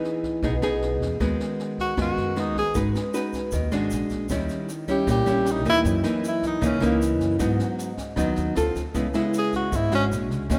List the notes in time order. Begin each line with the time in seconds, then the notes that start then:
Already playing: E3 B3 D#4 G#4
0.04 snare
0.23 kick, snare
0.43 B1 B2 B3 D#4 G#4, kick, snare
0.62 B1 B3 D#4 G#4, cross-stick, snare
0.82 snare
1.01 E2, kick, snare
1.20 D#2 D#3 G#3 B3 F#4, kick, cross-stick, snare
1.40 snare
1.59 snare
1.78 F#4, kick, snare
1.97 F#2 D#3 G#3 B3 F#4, kick, cross-stick, snare
2.01 F#4
2.17 F#2, snare
2.36 G#3 B3 D#4 F#4, cross-stick, snare
2.56 A#1 G#4, kick, snare
2.75 G#1 G#3 D#4 F#4 B4, kick, snare, shaker
2.95 cross-stick, snare, shaker
3.14 D#4 F#4 B4, snare, shaker
3.33 kick, snare, shaker
3.51 D#2 D#3, kick, snare, shaker
3.72 G#1 G#3 D4 F#4, cross-stick, snare, shaker
3.90 A#1, snare, shaker
4.10 A#1, kick, snare, shaker
4.29 D#2 D#3 G3 C#4 E4, kick, cross-stick, snare, shaker
4.49 snare, shaker
4.68 snare, shaker
4.88 G3 C#4 E4 G4, kick, snare, shaker
5.07 A#1 A#2 G4, kick, cross-stick, snare, shaker
5.26 A#1 G3 C#4 E4, snare, shaker
5.45 cross-stick, snare, shaker
5.51 D#4
5.65 D#2 E3 A#3 D#4, kick, snare, shaker
5.69 E4
5.84 F#2, kick, snare, shaker
6.04 E3 A#3 D#4, cross-stick, snare, shaker
6.23 snare, shaker
6.28 E4
6.43 kick, snare, shaker
6.47 D#4
6.61 C#2 C#3 E3 A#3 D#4, kick, snare, shaker
6.66 C#4
6.80 C#2 E3 A#3 D#4, cross-stick, snare, shaker
6.85 A#3
7.01 snare, shaker
7.20 F#2, kick, snare, shaker
7.39 G#2 F#3 B3 D#4, kick, cross-stick, snare, shaker
7.59 snare, shaker
7.78 snare, shaker
7.97 kick, snare, shaker
8.16 D#2 D#3 F#3 B3 D#4, kick, cross-stick, snare, shaker
8.36 D#2, snare, shaker
8.55 D2 C4 F4 A4, cross-stick, snare, shaker
8.75 D2, kick, snare, shaker
8.94 C#2 C#3 G#3 B3 E4, kick, snare, shaker
9.14 G#3 B3 E4, cross-stick, snare, shaker
9.34 snare, shaker
9.38 G#4
9.53 F#4, kick, snare, shaker
9.72 G#1 G#2 E4, kick, snare, shaker
9.92 G#1 G#3 C#4 D4 F#4, cross-stick, snare, shaker
10.12 A#1, snare, shaker
10.30 C#2, kick, snare, shaker
10.49 D#2 D#3 A#3 C#4 F#4, kick, cross-stick, snare, shaker
10.54 C#4